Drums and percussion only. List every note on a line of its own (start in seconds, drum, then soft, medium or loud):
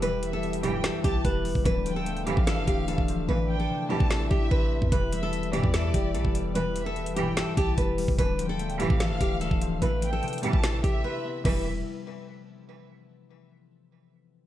0.02 closed hi-hat medium
0.23 closed hi-hat medium
0.43 closed hi-hat soft
0.53 closed hi-hat medium
0.63 closed hi-hat medium
0.84 snare loud
0.84 closed hi-hat medium
1.04 kick loud
1.04 closed hi-hat medium
1.25 kick loud
1.25 closed hi-hat medium
1.45 open hi-hat medium
1.55 kick loud
1.65 kick loud
1.65 closed hi-hat medium
1.86 closed hi-hat medium
2.06 closed hi-hat medium
2.17 closed hi-hat soft
2.27 closed hi-hat medium
2.37 kick loud
2.47 snare loud
2.47 closed hi-hat medium
2.68 kick loud
2.68 closed hi-hat medium
2.88 closed hi-hat medium
2.98 kick loud
3.08 closed hi-hat medium
4.00 kick loud
4.11 snare loud
4.31 kick loud
4.51 kick loud
4.82 kick loud
4.92 kick loud
4.92 closed hi-hat medium
5.13 closed hi-hat medium
5.33 closed hi-hat medium
5.43 closed hi-hat soft
5.53 closed hi-hat medium
5.64 kick loud
5.74 snare loud
5.74 closed hi-hat medium
5.94 kick loud
5.94 closed hi-hat medium
6.15 closed hi-hat medium
6.25 kick loud
6.35 closed hi-hat medium
6.55 closed hi-hat medium
6.76 closed hi-hat medium
6.96 closed hi-hat soft
7.06 closed hi-hat medium
7.17 closed hi-hat medium
7.37 snare loud
7.37 closed hi-hat medium
7.57 kick loud
7.57 closed hi-hat medium
7.78 kick loud
7.78 closed hi-hat medium
7.98 open hi-hat medium
8.08 kick loud
8.19 kick loud
8.19 closed hi-hat medium
8.39 closed hi-hat medium
8.59 closed hi-hat medium
8.70 closed hi-hat soft
8.80 closed hi-hat medium
8.90 kick loud
9.00 snare loud
9.00 closed hi-hat medium
9.21 kick loud
9.21 closed hi-hat medium
9.41 closed hi-hat medium
9.51 kick loud
9.61 closed hi-hat medium
9.82 closed hi-hat medium
10.02 closed hi-hat medium
10.23 closed hi-hat soft
10.28 closed hi-hat medium
10.33 closed hi-hat medium
10.38 closed hi-hat medium
10.43 closed hi-hat medium
10.53 kick loud
10.63 snare loud
10.63 closed hi-hat medium
10.84 kick loud
10.84 closed hi-hat medium
11.45 kick loud
11.45 crash loud